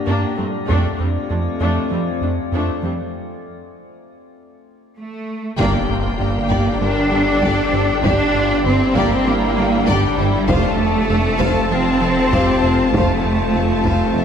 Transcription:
Already playing: A#2 D4 G4 D5
0.07 G2 A#3 D4
0.37 G2 G3 A3 C4
0.68 F2 A3 C4 D4 F4 D5, taiko
1.00 F2 G3 C4
1.30 F2 A3 D4
1.60 F2 A3 D4
1.91 F2 F3 G3 C4
2.21 F2 A3 D4
2.52 F2 A3 D4
2.83 F2 F3 G3 C4
4.98 A3
5.58 G1 G2 G3 A#3 D4 G4 D5 G5, taiko, impact
5.89 G2 F4
6.20 G1 G2 G4 D5
6.50 G1 G2 G4 D5, taiko
6.80 G1 G3 D4 G4 A#4 C5
7.11 G1 G3 G4 A4 D5
7.42 G1 G2 G4 D5, taiko
7.72 G1 G2 G4 C5
8.03 G1 G2 D4 G4 D5, taiko
8.34 G2 F4
8.64 G1 G2 C4 E4 G4 D5
8.95 G1 G2 A#3 G4 D5, taiko
9.12 C4
9.26 G1 G3 A#3 G4 C5
9.56 G1 G3 G4 D5
9.87 G1 G2 G3 D4 G4 D5, taiko
10.18 G1 G2 E4 G4 C5
10.48 F1 F2 A3 C4 F4 C5 F5 A5, taiko
10.80 F2 A4
11.09 F1 F2 C5 F5
11.40 F1 F2 C5 F5, taiko
11.71 F1 F3 C4 F4 C5 E5
12.02 F1 F3 A4 C5 F5
12.32 F1 F2 G4 C5 F5, taiko
12.62 F1 F2 F4 C5 E5
12.93 F1 F2 A3 C4 C5 F5, taiko
13.24 F2
13.55 F1 F2 C5 F5
13.84 F1 F2 C5 F5, taiko
14.15 F1 F3 C5 E5

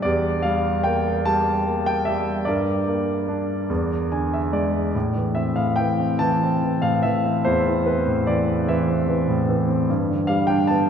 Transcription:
0.02 E2 G4 D5
0.42 G3 F5
0.84 A#3 G5
1.25 G3 A5
1.66 A#3
1.86 G5
2.05 G3 E5
2.45 G2 A#4 D5
2.88 A#3
3.28 D4
3.70 E2
4.12 D3 G#5
4.34 E5
4.52 G#3 D5
4.95 A2
5.16 E3
5.35 C4 E5
5.56 A2 F5
5.76 E3 G5
6.00 C4
6.19 E3 A5
6.43 C4
6.63 E3
6.82 A2 F5
7.03 E3 E5
7.25 C4
7.45 E2 E4 C5
7.66 E3
7.86 C4 B4
8.07 A2
8.27 E3 D5
8.47 C4
8.68 E3 E5
8.88 C4
9.08 E3
9.28 A2
9.48 E3
9.69 C4
9.90 G2
10.10 D3
10.27 G3 F5
10.47 D4 G5
10.67 B3 A5

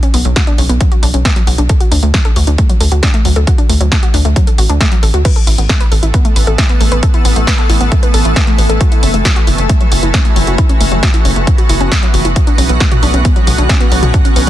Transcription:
0.03 C#4, closed hi-hat
0.14 B1 B3, open hi-hat
0.25 B1 F#3, closed hi-hat
0.36 F#4, kick, snare, closed hi-hat
0.47 D4, closed hi-hat
0.58 B1 C#4, open hi-hat
0.69 B1 B3, closed hi-hat
0.81 F#3, kick, closed hi-hat
0.92 F#4, closed hi-hat
1.03 B1 D4, open hi-hat
1.14 B1 C#4, closed hi-hat
1.25 B3, kick, snare, closed hi-hat
1.36 F#3, closed hi-hat
1.47 B1 F#4, open hi-hat
1.58 B1 D4, closed hi-hat
1.69 A4, kick, closed hi-hat
1.80 F#4, closed hi-hat
1.92 D2 D4, open hi-hat
2.03 D2 A3, closed hi-hat
2.14 F#3, kick, snare, closed hi-hat
2.25 A4, closed hi-hat
2.36 D2 F#4, open hi-hat
2.47 D2 D4, closed hi-hat
2.58 A3, kick, closed hi-hat
2.69 F#3, closed hi-hat
2.81 D2 A4, open hi-hat
2.92 D2 F#4, closed hi-hat
3.03 D4, kick, snare, closed hi-hat
3.14 A3, closed hi-hat
3.25 D2 F#3, open hi-hat
3.36 D2 A4, closed hi-hat
3.47 F#4, kick, closed hi-hat
3.58 D4, closed hi-hat
3.69 D2 A3, open hi-hat
3.81 D2 F#3, closed hi-hat
3.92 A4, kick, snare, closed hi-hat
4.03 F#4, closed hi-hat
4.14 D2 D4, open hi-hat
4.25 D2 A3, closed hi-hat
4.36 F#3, kick, closed hi-hat
4.47 A4, closed hi-hat
4.58 A1 F#4, open hi-hat
4.69 D2 D4, closed hi-hat
4.81 A3, kick, snare, closed hi-hat
4.92 F#3, closed hi-hat
5.03 A1 A4, open hi-hat
5.14 D2 F#4, closed hi-hat
5.25 E3 A3 B3 A4 B4, kick, closed hi-hat, crash
5.36 A4, closed hi-hat
5.47 A1 E4, open hi-hat
5.58 A1 B3, closed hi-hat
5.69 A3, kick, snare, closed hi-hat
5.80 B4, closed hi-hat
5.92 A1 A4, open hi-hat
6.03 A1 E4, closed hi-hat
6.14 B3, kick, closed hi-hat
6.25 A3, closed hi-hat
6.36 A1 B4, open hi-hat
6.47 A1 A4, closed hi-hat
6.58 E4, kick, snare, closed hi-hat
6.69 B3, closed hi-hat
6.81 A1 A3, open hi-hat
6.92 A1 B4, closed hi-hat
7.03 A4, kick, closed hi-hat
7.14 E4, closed hi-hat
7.25 A1 B3, open hi-hat
7.36 A1 A3, closed hi-hat
7.47 B4, kick, snare, closed hi-hat
7.58 A4, closed hi-hat
7.70 A1 E4, open hi-hat
7.81 A1 B3, closed hi-hat
7.92 A3, kick, closed hi-hat
8.03 B4, closed hi-hat
8.14 A1 A4, open hi-hat
8.25 A1 E4, closed hi-hat
8.36 B3, kick, snare, closed hi-hat
8.47 A3, closed hi-hat
8.58 A1 B4, open hi-hat
8.69 A1 A4, closed hi-hat
8.81 C#4 F#4, kick, closed hi-hat
8.92 E4, closed hi-hat
9.03 F#1 C#4, open hi-hat
9.14 F#1 A3, closed hi-hat
9.25 F#3, kick, snare, closed hi-hat
9.36 F#4, closed hi-hat
9.47 F#1 E4, open hi-hat
9.58 F#1 C#4, closed hi-hat
9.69 A3, kick, closed hi-hat
9.81 F#3, closed hi-hat
9.92 F#1 F#4, open hi-hat
10.03 F#1 E4, closed hi-hat
10.14 C#4, kick, snare, closed hi-hat
10.25 A3, closed hi-hat
10.36 F#1 F#3, open hi-hat
10.47 F#1 F#4, closed hi-hat
10.58 B3 E4, kick, closed hi-hat
10.69 C#4, closed hi-hat
10.81 F#1 A3, open hi-hat
10.92 F#1 F#3, closed hi-hat
11.03 F#4, kick, snare, closed hi-hat
11.14 E4, closed hi-hat
11.25 F#1 C#4, open hi-hat
11.36 F#1 A3, closed hi-hat
11.47 F#3, kick, closed hi-hat
11.58 F#4, closed hi-hat
11.69 F#1 E4, open hi-hat
11.80 F#1 C#4, closed hi-hat
11.92 A3, kick, snare, closed hi-hat
12.03 F#3, closed hi-hat
12.14 F#1 F#4, open hi-hat
12.25 F#1 E4, closed hi-hat
12.36 D3 C#4 F#4, kick, closed hi-hat
12.47 D4, closed hi-hat
12.58 B1 C#4, open hi-hat
12.69 B1 B3, closed hi-hat
12.80 F#3, kick, snare, closed hi-hat
12.92 F#4, closed hi-hat, mid tom
13.03 B1 D4, open hi-hat
13.14 B1 C#4, closed hi-hat
13.25 B3, kick, closed hi-hat
13.36 F#3, closed hi-hat
13.47 B1 F#4, open hi-hat, mid tom
13.58 B1 D4, closed hi-hat
13.69 C#4, kick, snare, closed hi-hat
13.80 B3, closed hi-hat
13.92 B1 F#3, open hi-hat
14.03 B1 F#4, closed hi-hat, mid tom
14.14 D4, kick, closed hi-hat
14.25 C#4, closed hi-hat
14.36 B1 B3, open hi-hat

